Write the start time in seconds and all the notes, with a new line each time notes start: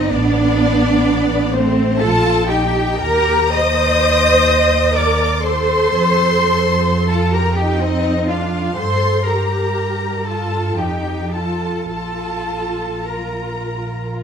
Already playing: G1 C4 D#4 D#5
0.10 A1 B3 D4 D5
1.54 A3 C4 C5
2.00 A#1 F4 A4 A5
2.48 D#4 G4 G5
3.00 D#2 G4 A#4 A#5
3.53 C5 D#5 D#6
4.96 A#4 D5 D6
5.42 A4 C5 C6
5.92 F2
7.08 F4 A4 A5
7.33 G4 A#4 A#5
7.55 D#4 G4 G5
7.80 C4 D#4 D#5
8.28 D4 F4 F5
8.32 F5
8.76 G2 A4 C5 C6
9.24 G4 A#4 A#5
10.24 F4 A4 A5
10.78 F2 D#4 G4 G5
11.33 F4 A4 A5
11.90 A#1 F4 A4 A5
13.06 F4 A#4 A#5
14.20 F4